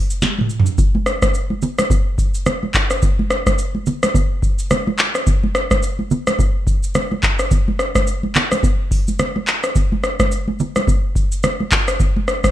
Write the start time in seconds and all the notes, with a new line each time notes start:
0.10 shaker
0.22 snare, high conga, low conga, shaker
0.39 mid tom, high conga
0.50 shaker
0.60 floor tom
0.66 shaker
0.78 kick, low conga, shaker
0.95 high conga
1.06 cross-stick, shaker
1.22 kick, cross-stick, high conga, shaker
1.34 shaker
1.50 high conga
1.62 low conga, shaker
1.79 cross-stick, high conga, shaker
1.90 kick, low conga, shaker
2.18 kick, shaker
2.34 shaker
2.46 cross-stick, high conga, low conga, shaker
2.63 high conga
2.74 kick, clap, shaker
2.90 cross-stick, shaker
3.02 kick, low conga, shaker
3.19 high conga
3.30 cross-stick, shaker
3.47 kick, cross-stick, high conga, shaker
3.59 shaker
3.75 high conga
3.86 low conga, shaker
4.03 cross-stick, high conga, shaker
4.15 kick, low conga, shaker
4.42 kick, shaker
4.59 shaker
4.70 cross-stick, high conga, low conga, shaker
4.87 high conga
4.98 clap, shaker
5.15 cross-stick, shaker
5.27 kick, low conga, shaker
5.43 high conga
5.55 cross-stick, shaker
5.71 kick, cross-stick, high conga, shaker
5.83 shaker
5.99 high conga
6.11 low conga, shaker
6.27 cross-stick, high conga, shaker
6.39 kick, low conga, shaker
6.67 kick, shaker
6.83 shaker
6.95 cross-stick, high conga, low conga, shaker
7.12 high conga
7.23 kick, clap, shaker
7.39 cross-stick, shaker
7.51 kick, low conga, shaker
7.68 high conga
7.79 cross-stick, shaker
7.95 kick, cross-stick, high conga, shaker
8.07 shaker
8.23 high conga
8.35 clap, low conga, shaker
8.52 cross-stick, high conga, shaker
8.63 kick, low conga, shaker
8.91 kick, open hi-hat, shaker
9.08 high conga, shaker
9.19 cross-stick, high conga, low conga, shaker
9.36 high conga
9.47 clap, shaker
9.63 cross-stick, shaker
9.75 kick, low conga, shaker
9.92 high conga
10.04 cross-stick, shaker
10.20 kick, cross-stick, high conga, shaker
10.32 shaker
10.48 high conga
10.60 low conga, shaker
10.76 cross-stick, high conga, shaker
10.87 kick, low conga, shaker
11.15 kick, shaker
11.32 shaker
11.43 cross-stick, high conga, low conga, shaker
11.60 high conga
11.71 kick, clap, shaker
11.88 cross-stick, shaker
12.00 kick, low conga, shaker
12.16 high conga
12.28 cross-stick, shaker
12.44 kick, cross-stick, high conga, shaker